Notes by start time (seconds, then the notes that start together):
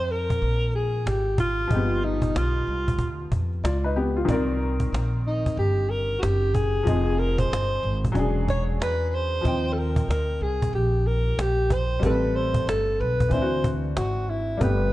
Already playing: F2 F3 C4 D#4 C5 G5
0.09 A#4, cajon slap
0.30 cajon bass
0.42 A#1
0.62 cajon slap
0.74 G#4, cajon slap
0.95 cajon slap
1.06 G#1 G4, cajon slap
1.26 cajon slap
1.38 F4, cajon bass
1.60 cajon slap
1.67 G1 F3 G#3, cajon bass
1.72 D#4 G4
1.76 B3
1.90 cajon slap
2.03 D#4, cajon slap
2.22 cajon bass
2.35 B1 F4, cajon slap
2.55 cajon slap
2.67 C2, cajon slap
2.88 cajon bass
2.99 D2, cajon bass
3.19 cajon slap
3.32 F2, cajon bass
3.52 cajon slap
3.64 C#2 F4 D5, cajon slap
3.84 D#4 B4, cajon slap
3.96 B3 G4, cajon slap
4.17 F4, cajon slap
4.25 C2 D#3 C4, cajon bass
4.30 A#4 D5
4.49 cajon slap
4.62 cajon slap
4.80 cajon bass
4.93 A#1, cajon slap
5.14 cajon slap
5.25 D#4, cajon slap
5.46 muted upright bass stroke, cajon bass
5.57 G1 G4
5.78 cajon slap
5.90 A#4, cajon slap
6.11 cajon slap
6.19 F#4 G4
6.23 F#1, cajon slap
6.42 cajon slap
6.54 G#4, cajon bass
6.76 cajon slap
6.83 F1 F3 C4, cajon bass
6.88 D#4 G#4
7.18 A#4, cajon slap
7.38 C5, cajon bass
7.52 G1, cajon slap
7.72 cajon slap
7.83 G#1, cajon slap
8.04 cajon bass
8.12 E1 F#3 C#4, cajon bass
8.16 D4 G#4
8.37 cajon slap
8.48 C#5, cajon bass
8.70 cajon slap
8.80 E2 B4, cajon slap
9.01 cajon slap
9.09 B4
9.13 C5, cajon slap
9.34 cajon slap
9.41 D#2 F3 C4
9.45 D#4 G5, cajon bass
9.73 A4
9.78 A#4, cajon slap
9.96 cajon bass
10.08 D2 A#4, cajon slap
10.30 cajon slap
10.41 C2 G#4, cajon slap
10.62 cajon bass
10.73 A#1 G4, cajon slap
10.94 cajon slap
11.06 A#4, cajon slap
11.27 cajon slap
11.38 A#1 G4, cajon slap
11.58 cajon slap
11.70 C5, cajon bass
11.92 cajon slap
11.99 A1 G3 A3, cajon bass
12.03 C4 A4 B4
12.23 cajon slap
12.36 C5, cajon slap
12.54 cajon bass
12.67 G1 A4, cajon slap
12.88 cajon slap
12.99 B1 B4, cajon slap
13.20 cajon bass
13.29 D2 E3 C4, cajon bass
13.33 D4 E4 C5
13.42 F#4
13.52 cajon slap
13.64 cajon bass
13.84 cajon slap
13.96 G#1 F#4, cajon slap
14.16 cajon slap
14.29 E4, cajon slap
14.50 cajon slap
14.57 G1 G3 A3 B4, cajon bass
14.62 B3 G4
14.81 cajon slap